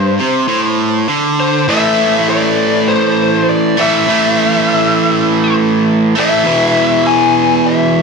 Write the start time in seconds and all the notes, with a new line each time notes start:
Already playing: G2 C5
0.19 C3
0.48 A2
1.09 D3
1.40 C5
1.68 A2 E3 A3 E5
2.29 D5
2.88 C5
3.49 D5
3.77 A2 E3 A3 E5
4.06 A2 E3 A3
6.15 A2 E3 A3
6.20 E5
6.44 E2 B2 E3
7.07 G#5
7.66 E5